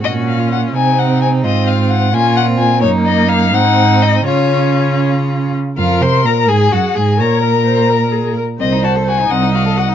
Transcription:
0.02 A#2 C#4 F#4 D#5
0.28 F5
0.39 F4
0.52 F#5
0.75 C3 C4 D#4 G#5
0.99 F#5
1.21 G#5
1.43 G#2 C4 F4 D#5
1.67 F5
1.90 F#5
2.13 A#2 C#4 F4 G#5
2.37 F#5
2.48 C4
2.58 G#5
2.81 F#2 A#3 D#4 C#5
3.05 D#5
3.29 F5
3.52 G#2 C4 D#4 F#5
4.02 D#5
4.27 C#3 C#4 F4 C#5
5.77 F2 F4 A#4 F5
6.01 C3 C5 C6
6.25 A#2 A#4 A#5
6.48 G#2 G#4 G#5
6.72 F#2 F#4 F#5
6.95 G#2 G#4 G#5
7.19 A#2 A#4 C#5 A#5
7.43 A#4
7.67 C5
7.90 A#4
8.12 G#4
8.37 A#4
8.60 C2 C4 C5 D#5
8.72 D#4
8.84 F#4 A5
8.96 A4
9.07 F#4 G#5
9.20 D#4
9.30 C2 C4 D#5 F#5
9.43 D#4
9.55 F#4 F5
9.65 A4
9.77 F#4 F#5
9.89 D#4

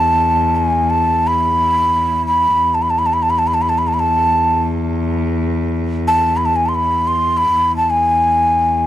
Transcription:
Already playing: E2 A5
0.56 G#5
0.90 A5
1.27 B5
2.27 B5
2.56 E2
2.75 A5
2.82 B5
2.90 A5
2.99 B5
3.06 A5
3.13 B5
3.22 A5
3.30 B5
3.39 A5
3.47 B5
3.54 A5
3.62 B5
3.69 A5
3.78 B5
3.88 A5
3.94 B5
4.00 A5
6.08 A5
6.37 B5
6.46 A5
6.56 G#5
6.66 A5 C6
6.75 B5
7.07 C6
7.37 B5
7.56 E2
7.77 A5
7.90 G#5

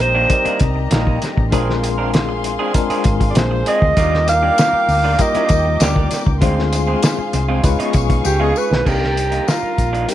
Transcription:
Already playing: G3 C4 D#4 G4 A#4 D5 D#5 A#5
0.00 A#1 C5
0.15 D#3 A#3 D4
0.29 G3 C4 D#4 A#4 D5, muted clean electric guitar stroke, kick, closed hi-hat
0.45 D#3 A#3 D4, muted fingered electric bass stroke, closed hi-hat
0.60 C2, muted clean electric guitar stroke, kick, closed hi-hat
0.76 muted clean electric guitar stroke
0.91 A#1 D#3 A#3 D#4, snare, closed hi-hat
1.07 kick
1.22 muted clean electric guitar stroke, snare, closed hi-hat
1.37 A1, muted clean electric guitar stroke, kick
1.51 A#1 G#3 C4 D4 F4 G#4 A#4 F5 C6, kick, closed hi-hat
1.70 snare
1.83 muted clean electric guitar stroke, closed hi-hat
1.98 C4 D4 A#4
2.13 muted clean electric guitar stroke, snare, closed hi-hat
2.29 muted clean electric guitar stroke
2.44 closed hi-hat
2.59 C4 D4 G#4
2.74 G#3 C4 D4 F4 A#4, kick, closed hi-hat
2.90 C4 D4 G#4, muted fingered electric bass stroke, closed hi-hat
3.04 G#1, kick, closed hi-hat
3.20 muted clean electric guitar stroke, kick, closed hi-hat
3.30 D5
3.35 A#1 C5, snare, closed hi-hat
3.51 muted clean electric guitar stroke
3.66 C4 D4 G#4 D#5, closed hi-hat
3.82 D2, muted clean electric guitar stroke, kick
3.96 D#2 G3 A#3 D4 D#4 F4 A#4 G5 D6, kick, closed hi-hat, tambourine
4.14 snare
4.28 F5, muted clean electric guitar stroke, closed hi-hat, tambourine
4.43 G3 D4 G4
4.58 snare, closed hi-hat, tambourine
4.73 muted fingered electric bass stroke, muted clean electric guitar stroke
4.88 D2, open hi-hat, tambourine
5.04 G3 D4 F4
5.19 G3 A#3 D#4 F4 A#4 D#5, muted clean electric guitar stroke, kick, closed hi-hat, tambourine
5.35 G3 D4 F4, muted fingered electric bass stroke, closed hi-hat
5.49 D#2, muted clean electric guitar stroke, kick, closed hi-hat, tambourine
5.65 muted clean electric guitar stroke
5.80 D2 G3 D4 G4 D5, snare, closed hi-hat, tambourine
5.96 kick
6.11 muted clean electric guitar stroke, snare, closed hi-hat, tambourine
6.26 C#2, muted clean electric guitar stroke, kick
6.41 D2 G#3 C4 D4 F4 G#4 C5 F5 C6, kick, closed hi-hat
6.59 snare
6.72 muted clean electric guitar stroke, closed hi-hat, tambourine
6.87 G#3 C4 G#4
7.03 snare, closed hi-hat, tambourine
7.18 muted clean electric guitar stroke, muted fingered electric bass stroke
7.33 C2, closed hi-hat, tambourine
7.48 G#3 C4 F4
7.63 C#2 G#3 C#4 D#4 F4 G#4 B4 F5 C#6, muted clean electric guitar stroke, kick, closed hi-hat, tambourine
7.79 B3 D#4 F4, closed hi-hat
7.93 B1, muted clean electric guitar stroke, kick, closed hi-hat, tambourine
8.10 muted clean electric guitar stroke, kick, closed hi-hat
8.24 C#2 G4, muted clean electric guitar stroke, tambourine
8.40 B3 D#4 F4 G#4
8.55 B4, muted clean electric guitar stroke, tambourine
8.70 B1, muted clean electric guitar stroke, snare
8.85 C2 D#3 G3 A#3 C4 D4 D#4 G4 A4 A#4 A#5, kick, crash, tambourine
8.93 A#4
9.04 snare
9.16 muted clean electric guitar stroke, closed hi-hat, tambourine
9.31 D#3 A#3 D#4, closed hi-hat
9.47 F4, muted clean electric guitar stroke, snare, tambourine
9.62 muted clean electric guitar stroke, muted fingered electric bass stroke
9.78 A#1, kick, closed hi-hat, tambourine
9.93 D#3 A#3 D4, closed hi-hat
10.08 G3 C4 D4 D#4 G4 A#4, muted clean electric guitar stroke, closed hi-hat, tambourine

